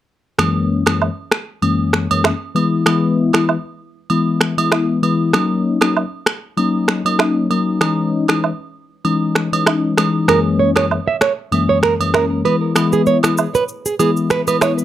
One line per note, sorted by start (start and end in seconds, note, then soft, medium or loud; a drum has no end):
0.38 0.82 F#2 medium
0.38 0.82 E3 medium
0.38 0.82 G#3 medium
0.38 0.83 A#3 medium
0.38 0.83 C#4 medium
0.38 finger snap medium
0.38 cross-stick medium
0.38 high agogo medium
0.86 1.08 F#2 medium
0.86 1.08 E3 medium
0.86 1.08 G#3 medium
0.86 1.08 A#3 medium
0.86 1.08 C#4 medium
0.86 finger snap medium
0.86 cross-stick medium
0.86 high agogo medium
1.02 low woodblock medium
1.32 finger snap medium
1.32 cross-stick medium
1.62 2.06 F#2 medium
1.62 2.06 E3 medium
1.62 2.06 G#3 medium
1.62 2.06 A#3 medium
1.62 2.06 C#4 medium
1.62 high agogo medium
1.93 finger snap medium
1.93 cross-stick medium
2.10 2.31 F#2 medium
2.10 2.31 E3 medium
2.10 2.32 G#3 medium
2.10 2.32 A#3 medium
2.10 2.32 C#4 medium
2.10 high agogo medium
2.24 finger snap medium
2.24 cross-stick medium
2.24 low woodblock medium
2.55 2.84 E3 medium
2.55 2.84 G#3 medium
2.55 2.84 B3 medium
2.55 2.84 E4 medium
2.55 high agogo medium
2.86 3.30 E3 medium
2.86 3.30 G#3 medium
2.86 3.30 B3 medium
2.86 3.30 E4 loud
2.86 finger snap medium
2.86 cross-stick medium
2.86 high agogo medium
3.33 3.55 E3 medium
3.33 3.55 G#3 medium
3.33 3.55 B3 medium
3.33 3.55 E4 medium
3.33 finger snap medium
3.33 cross-stick medium
3.33 high agogo medium
3.49 low woodblock medium
4.10 4.54 E3 medium
4.10 4.54 G#3 medium
4.10 4.54 B3 medium
4.10 4.54 E4 medium
4.10 high agogo medium
4.41 finger snap medium
4.41 cross-stick medium
4.57 4.99 E3 medium
4.57 4.99 G#3 medium
4.57 4.99 B3 medium
4.57 4.99 E4 medium
4.57 high agogo medium
4.72 finger snap medium
4.72 cross-stick medium
4.72 low woodblock medium
5.02 5.31 E3 medium
5.02 5.31 G#3 medium
5.02 5.31 B3 medium
5.02 5.32 E4 medium
5.02 high agogo medium
5.33 5.77 F#3 medium
5.33 5.77 A#3 medium
5.33 5.78 C#4 medium
5.33 5.78 D#4 loud
5.33 finger snap medium
5.33 cross-stick medium
5.33 high agogo medium
5.81 6.03 F#3 medium
5.81 6.03 A#3 medium
5.81 6.03 C#4 medium
5.81 6.03 D#4 medium
5.81 finger snap medium
5.81 cross-stick medium
5.81 high agogo medium
5.97 low woodblock medium
6.26 finger snap medium
6.26 cross-stick medium
6.57 7.01 F#3 medium
6.57 7.01 A#3 medium
6.57 7.01 C#4 medium
6.57 7.01 D#4 loud
6.57 high agogo medium
6.88 finger snap medium
6.88 cross-stick medium
7.05 7.47 F#3 medium
7.05 7.47 A#3 medium
7.05 7.47 C#4 medium
7.05 7.47 D#4 medium
7.05 high agogo medium
7.19 finger snap medium
7.19 cross-stick medium
7.19 low woodblock medium
7.50 7.79 F#3 medium
7.50 7.79 A#3 medium
7.50 7.79 C#4 medium
7.50 7.79 D#4 medium
7.50 high agogo medium
7.81 8.25 E3 medium
7.81 8.25 G#3 medium
7.81 8.25 C#4 medium
7.81 8.25 D#4 loud
7.81 finger snap medium
7.81 cross-stick medium
7.81 high agogo medium
8.28 8.50 E3 medium
8.28 8.50 G#3 medium
8.28 8.50 C#4 medium
8.28 8.50 D#4 medium
8.28 finger snap medium
8.28 cross-stick medium
8.28 high agogo medium
8.44 low woodblock medium
9.04 9.48 E3 medium
9.04 9.48 G#3 medium
9.04 9.48 C#4 medium
9.04 9.49 D#4 loud
9.04 high agogo medium
9.35 finger snap medium
9.35 cross-stick medium
9.52 9.94 E3 medium
9.52 9.94 G#3 medium
9.52 9.94 C#4 medium
9.52 9.94 D#4 medium
9.52 high agogo medium
9.66 finger snap medium
9.66 cross-stick medium
9.66 low woodblock medium
9.97 10.26 E3 medium
9.97 10.26 G#3 medium
9.97 10.26 C#4 medium
9.97 10.26 D#4 medium
9.97 finger snap medium
9.97 cross-stick medium
9.97 high agogo medium
10.28 10.72 F#2 medium
10.28 10.72 E3 medium
10.28 10.72 G#3 medium
10.28 10.72 A#3 medium
10.28 10.72 C#4 loud
10.28 10.39 A#4 medium
10.28 finger snap medium
10.28 cross-stick medium
10.28 high agogo medium
10.59 10.70 C#5 medium
10.76 10.97 F#2 medium
10.76 10.97 E3 medium
10.76 10.98 G#3 medium
10.76 10.98 A#3 medium
10.76 10.98 C#4 medium
10.76 10.85 C#5 medium
10.76 finger snap medium
10.76 cross-stick medium
10.76 high agogo medium
10.91 low woodblock medium
11.07 11.16 E5 medium
11.21 11.31 C#5 medium
11.21 finger snap medium
11.21 cross-stick loud
11.52 11.96 F#2 medium
11.52 11.96 E3 medium
11.52 11.96 G#3 medium
11.52 11.96 A#3 medium
11.52 11.96 C#4 medium
11.52 high agogo medium
11.69 11.77 C#5 medium
11.83 11.93 A#4 medium
11.83 finger snap medium
11.83 cross-stick medium
12.00 12.41 F#2 medium
12.00 12.41 E3 medium
12.00 12.41 G#3 medium
12.00 12.41 A#3 medium
12.00 12.42 C#4 medium
12.00 high agogo medium
12.14 12.24 A#4 medium
12.14 finger snap medium
12.14 cross-stick medium
12.14 low woodblock medium
12.44 12.73 E3 medium
12.44 12.73 G#3 medium
12.44 12.73 B3 medium
12.44 12.74 E4 medium
12.44 12.55 B4 medium
12.44 high agogo medium
12.75 13.19 E3 medium
12.75 13.19 G#3 medium
12.75 13.20 B3 medium
12.75 13.20 E4 loud
12.75 finger snap medium
12.75 cross-stick medium
12.75 high agogo medium
12.75 shaker medium
12.93 13.01 G#4 medium
12.93 shaker soft
13.06 13.17 C#5 medium
13.06 shaker soft
13.23 13.45 E3 medium
13.23 13.45 G#3 medium
13.23 13.45 B3 medium
13.23 13.45 E4 medium
13.23 finger snap medium
13.23 cross-stick medium
13.23 high agogo medium
13.23 shaker medium
13.38 low woodblock medium
13.38 shaker medium
13.55 13.63 B4 medium
13.55 shaker medium
13.68 shaker medium
13.86 13.94 G#4 medium
13.86 shaker medium
13.99 14.43 E3 medium
13.99 14.43 G#3 medium
13.99 14.43 B3 medium
13.99 14.43 E4 loud
13.99 14.10 G#4 medium
13.99 high agogo medium
13.99 shaker medium
14.17 shaker soft
14.30 14.41 B4 medium
14.30 finger snap medium
14.30 cross-stick medium
14.30 shaker medium
14.47 14.85 E3 medium
14.47 14.85 G#3 medium
14.47 14.85 B3 medium
14.47 14.85 E4 medium
14.47 14.56 B4 medium
14.47 high agogo medium
14.47 shaker medium
14.61 14.72 C#5 medium
14.61 finger snap medium
14.61 cross-stick medium
14.61 low woodblock medium
14.61 shaker medium
14.78 shaker medium